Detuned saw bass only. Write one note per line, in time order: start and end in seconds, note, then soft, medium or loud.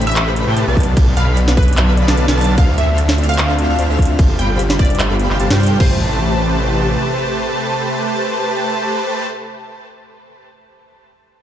0.00 0.45 A1 medium
0.47 0.55 A2 loud
0.57 0.65 A2 medium
0.68 0.95 B1 loud
0.97 1.15 B1 loud
1.17 2.06 B1 loud
2.08 2.16 B1 loud
2.18 2.26 B1 loud
2.28 2.59 B1 loud
2.58 2.76 D2 loud
2.78 3.67 D2 loud
3.69 3.77 D2 loud
3.79 3.87 D2 loud
3.90 4.17 D2 loud
4.19 4.37 G1 loud
4.39 5.28 G1 loud
5.31 5.38 G1 loud
5.40 5.48 G1 loud
5.51 5.78 G2 loud
5.80 6.97 A1 loud